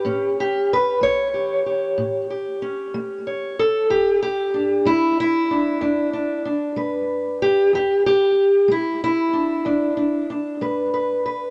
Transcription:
0.00 0.39 G4 medium
0.05 0.63 A2 medium
0.05 2.61 C#4 medium
0.40 0.71 G4 medium
0.73 1.03 B4 medium
1.01 1.59 A3 medium
1.01 2.30 C#5 medium
1.34 1.65 G4 soft
1.66 2.29 G4 soft
1.98 2.55 A2 medium
2.30 3.58 G4 soft
2.62 3.86 C#4 medium
2.94 3.51 A3 medium
3.27 3.86 C#5 medium
3.59 3.90 A4 medium
3.90 4.47 E2 medium
3.90 4.21 G4 loud
4.22 4.86 G4 loud
4.54 5.50 D4 medium
4.85 5.43 G#3 medium
4.85 5.18 E4 medium
5.20 6.46 E4 loud
5.51 5.81 D4 medium
5.81 6.38 E2 medium
5.81 6.12 D4 medium
6.13 6.44 D4 soft
6.45 7.69 D4 medium
6.76 7.34 G#3 medium
6.76 8.71 B4 soft
7.42 7.73 G4 medium
7.73 8.30 E2 medium
7.73 8.05 G4 medium
8.06 8.69 G4 medium
8.68 9.26 G#3 medium
8.68 9.02 E4 medium
9.04 10.30 E4 loud
9.33 9.65 D4 medium
9.65 10.22 E2 medium
9.65 9.96 D4 medium
9.97 10.29 D4 soft
10.30 11.50 D4 medium
10.61 11.18 G#3 medium
10.61 10.93 B4 medium
10.94 11.25 B4 soft
11.26 11.50 B4 soft

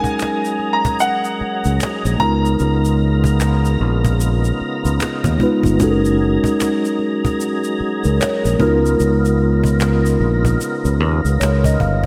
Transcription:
0.00 2.17 F#3 medium
0.00 0.68 G#3 medium
0.00 0.69 C#4 medium
0.00 0.69 D#4 medium
0.00 12.06 D#4 medium
0.00 0.70 F#4 medium
0.00 2.17 G#4 medium
0.00 0.71 A#4 medium
0.00 0.76 G#5 loud
0.00 8.55 A#5 medium
0.00 cajon bass medium
0.05 shaker soft
0.19 finger snap medium
0.19 cajon slap medium
0.19 shaker medium
0.45 shaker soft
0.59 cajon slap soft
0.73 1.00 A#5 medium
0.85 cajon bass medium
0.85 shaker soft
1.00 1.76 F#5 medium
1.00 cajon slap soft
1.00 shaker medium
1.24 shaker soft
1.40 muted fingered electric bass stroke soft
1.40 cajon slap soft
1.64 1.79 C#2 medium
1.64 cajon slap soft
1.64 shaker soft
1.80 finger snap medium
1.80 cajon slap loud
1.80 shaker medium
2.05 2.18 A#1 medium
2.05 shaker soft
2.18 2.55 C#2 medium
2.18 5.76 C#3 medium
2.18 3.49 G#3 medium
2.18 3.49 B3 medium
2.18 5.76 B3 medium
2.18 3.50 D#4 medium
2.18 5.76 F4 medium
2.18 3.50 F4 medium
2.18 3.76 A#5 loud
2.18 cajon bass loud
2.23 3.51 A#4 medium
2.45 cajon slap soft
2.45 shaker soft
2.59 3.76 C#2 loud
2.59 cajon slap soft
2.59 shaker medium
2.85 shaker soft
2.99 cajon slap soft
3.24 cajon bass medium
3.24 shaker soft
3.40 finger snap medium
3.40 cajon slap medium
3.40 shaker medium
3.65 shaker soft
3.79 4.50 A#1 medium
3.79 cajon slap soft
4.05 cajon bass medium
4.05 shaker soft
4.19 cajon slap soft
4.19 shaker medium
4.44 shaker soft
4.60 muted fingered electric bass stroke soft
4.60 cajon slap soft
4.83 4.98 C#2 medium
4.83 cajon slap soft
4.83 shaker soft
5.00 finger snap medium
5.00 muted fingered electric bass stroke soft
5.00 cajon slap loud
5.00 shaker medium
5.24 5.38 D#2 medium
5.24 cajon bass medium
5.24 shaker soft
5.39 5.73 G#3 medium
5.39 5.73 B3 medium
5.39 5.74 D#4 medium
5.39 5.74 F4 medium
5.39 cajon bass medium
5.43 5.75 B4 medium
5.63 5.81 G1 medium
5.63 cajon bass medium
5.63 shaker soft
5.79 6.37 F#1 loud
5.79 8.57 F#3 medium
5.79 7.09 G#3 medium
5.79 7.09 C#4 medium
5.79 7.10 D#4 medium
5.79 7.10 F#4 medium
5.79 8.57 G#4 medium
5.79 cajon bass loud
5.79 shaker medium
5.84 5.90 A4 medium
5.91 7.14 A#4 medium
6.05 shaker soft
6.19 cajon slap soft
6.44 cajon bass medium
6.44 shaker soft
6.60 finger snap medium
6.60 cajon slap medium
6.60 shaker medium
6.85 shaker soft
6.99 cajon slap soft
7.25 cajon bass medium
7.25 shaker soft
7.40 cajon slap soft
7.40 shaker medium
7.64 shaker soft
7.80 muted fingered electric bass stroke soft
7.80 cajon slap soft
8.03 8.18 C#2 medium
8.03 8.19 A#4 medium
8.03 cajon slap soft
8.03 shaker soft
8.21 8.43 C#5 medium
8.21 finger snap medium
8.21 cajon slap loud
8.21 shaker medium
8.45 8.58 A#1 medium
8.45 8.61 A#4 medium
8.45 shaker soft
8.58 8.95 C#2 loud
8.58 12.06 C#3 medium
8.58 9.88 G#3 medium
8.58 9.89 B3 medium
8.58 12.06 B3 medium
8.58 9.90 D#4 medium
8.58 12.06 F4 medium
8.58 9.90 F4 medium
8.58 12.06 A#4 medium
8.58 cajon bass medium
8.63 9.91 A#4 medium
8.84 cajon slap soft
8.84 shaker soft
9.00 10.16 C#2 loud
9.00 cajon slap soft
9.00 shaker medium
9.25 shaker soft
9.39 cajon slap soft
9.64 cajon bass medium
9.64 shaker soft
9.80 finger snap medium
9.80 cajon slap loud
9.80 shaker medium
10.06 shaker soft
10.19 10.55 A#1 medium
10.19 cajon slap soft
10.45 cajon bass medium
10.45 shaker soft
10.60 cajon slap soft
10.60 shaker medium
10.85 11.00 C#2 medium
10.85 shaker soft
11.00 11.21 D#2 medium
11.00 cajon slap soft
11.24 11.38 C#2 medium
11.24 cajon slap soft
11.24 shaker soft
11.40 11.76 C#2 medium
11.40 11.63 C#5 medium
11.40 finger snap medium
11.40 cajon slap loud
11.40 shaker medium
11.64 11.79 D#5 medium
11.64 cajon bass medium
11.64 shaker soft
11.80 12.02 G1 medium
11.80 12.03 F5 medium
11.80 cajon bass medium

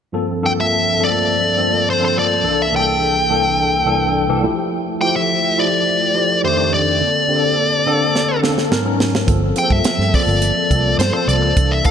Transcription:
0.12 0.38 G2 medium
0.12 0.38 F3 medium
0.12 0.39 A#3 medium
0.12 0.39 C4 medium
0.12 0.39 A4 medium
0.42 0.92 G2 medium
0.42 0.92 F3 medium
0.42 0.93 A#3 medium
0.42 0.92 C4 medium
0.42 0.93 A4 medium
0.42 0.51 G5 medium
0.61 1.03 E5 medium
0.99 1.49 G2 medium
0.99 1.49 F3 medium
0.99 1.06 A3 soft
0.99 1.49 C4 medium
0.99 1.50 A4 medium
1.04 1.53 A#3 medium
1.04 1.90 D5 loud
1.56 1.94 G2 medium
1.56 1.94 F3 medium
1.56 1.94 A#3 medium
1.56 1.94 C4 medium
1.56 1.94 A4 medium
1.90 2.03 C5 medium
1.99 2.37 G2 medium
1.99 2.37 F3 medium
1.99 2.37 A#3 medium
1.99 2.37 C4 medium
1.99 2.37 A4 medium
2.05 2.16 C5 medium
2.19 2.61 D5 medium
2.43 2.68 C2 medium
2.43 2.68 E3 medium
2.43 2.68 A#3 medium
2.43 2.68 D4 medium
2.43 2.68 A4 medium
2.62 2.73 E5 medium
2.71 3.21 C2 medium
2.71 3.21 E3 medium
2.71 3.21 A#3 medium
2.71 3.21 D4 medium
2.71 2.78 G#4 medium
2.76 3.25 A4 medium
2.76 4.41 G5 medium
3.29 3.78 C2 medium
3.29 3.79 E3 medium
3.29 3.79 A#3 medium
3.29 3.79 D4 medium
3.29 3.79 A4 medium
3.85 4.23 C2 medium
3.85 4.23 E3 medium
3.85 4.23 A#3 medium
3.85 4.23 D4 medium
3.85 4.23 A4 medium
4.28 4.43 C2 medium
4.28 4.43 E3 medium
4.28 4.43 A#3 medium
4.28 4.43 D4 medium
4.28 4.44 A4 medium
4.42 4.92 F3 medium
4.42 4.92 A3 medium
4.42 4.93 E4 medium
4.42 4.93 G4 medium
5.01 5.50 F3 medium
5.01 5.50 A3 medium
5.01 5.50 E4 medium
5.01 5.50 G4 medium
5.01 5.15 G5 medium
5.16 5.59 E5 medium
5.57 6.07 F3 medium
5.57 6.07 A3 medium
5.57 6.07 E4 medium
5.57 6.07 G4 medium
5.57 6.40 D5 medium
6.14 6.43 F3 medium
6.14 6.43 A3 medium
6.14 6.43 E4 medium
6.14 6.43 G4 medium
6.44 6.55 F2 medium
6.44 6.56 D#3 medium
6.44 6.56 A3 medium
6.44 6.56 D4 medium
6.44 6.56 G4 medium
6.44 6.73 C5 medium
6.57 6.94 F2 medium
6.57 6.94 D#3 medium
6.57 6.94 A3 medium
6.57 6.94 D4 medium
6.57 6.94 G4 medium
6.74 8.40 D5 medium
7.00 7.25 D3 medium
7.00 7.25 A#3 medium
7.00 7.25 C4 medium
7.00 7.25 A4 medium
7.28 7.78 D3 medium
7.28 7.78 A#3 medium
7.28 7.78 C4 medium
7.28 7.35 G4 medium
7.36 7.81 A4 medium
7.86 8.35 D3 medium
7.86 8.35 A#3 medium
7.86 8.35 C4 medium
7.86 8.36 A4 loud
8.15 snare medium
8.42 8.71 D3 medium
8.42 8.71 A#3 medium
8.42 8.71 C4 medium
8.42 8.71 A4 medium
8.42 snare medium
8.58 snare medium
8.71 8.83 G#2 medium
8.71 8.83 F#3 medium
8.71 8.84 B3 medium
8.71 8.84 C#4 medium
8.71 8.84 A#4 loud
8.71 snare medium
8.85 9.22 G#2 medium
8.85 9.22 F#3 medium
8.85 9.23 B3 medium
8.85 9.23 C#4 medium
8.85 9.23 A#4 medium
9.00 snare medium
9.15 snare medium
9.26 9.51 G1 medium
9.26 9.52 F3 medium
9.26 9.52 A#3 medium
9.26 9.52 C4 medium
9.26 9.53 A4 medium
9.26 kick loud
9.26 closed hi-hat medium
9.56 10.06 F3 medium
9.56 10.06 A#3 medium
9.56 10.06 C4 medium
9.56 9.64 G#4 medium
9.56 9.72 G5 medium
9.56 closed hi-hat medium
9.63 10.10 A4 medium
9.70 9.82 G2 medium
9.70 10.15 E5 medium
9.70 kick medium
9.84 muted fingered electric bass stroke soft
9.84 snare loud
9.84 closed hi-hat loud
9.98 10.10 G2 medium
9.98 snare soft
10.13 10.63 F3 medium
10.13 10.20 A3 soft
10.13 10.63 C4 medium
10.13 10.64 A4 medium
10.13 10.96 D5 medium
10.13 kick medium
10.13 open hi-hat medium
10.20 10.66 A#3 medium
10.27 10.50 G1 medium
10.42 closed hi-hat medium
10.70 10.94 C2 medium
10.70 11.07 F3 medium
10.70 11.08 A#3 medium
10.70 11.08 C4 medium
10.70 11.08 A4 medium
10.70 kick medium
10.70 closed hi-hat medium
10.98 11.10 G2 loud
10.98 11.12 C5 medium
10.98 snare loud
10.98 closed hi-hat medium
11.12 11.50 F3 medium
11.12 11.51 A#3 medium
11.12 11.51 C4 medium
11.12 11.51 A4 medium
11.12 11.27 C5 medium
11.27 11.41 C2 medium
11.27 11.73 D5 medium
11.27 closed hi-hat medium
11.41 11.53 C#2 medium
11.56 11.80 C2 medium
11.56 11.81 E3 medium
11.56 11.81 A#3 medium
11.56 11.81 D4 medium
11.56 11.81 A4 medium
11.56 kick loud
11.56 closed hi-hat medium
11.71 11.85 E5 medium
11.84 11.91 E3 medium
11.84 11.91 A#3 medium
11.84 11.91 D4 medium
11.84 11.91 A4 medium
11.84 11.91 G5 medium
11.84 kick medium
11.84 closed hi-hat medium

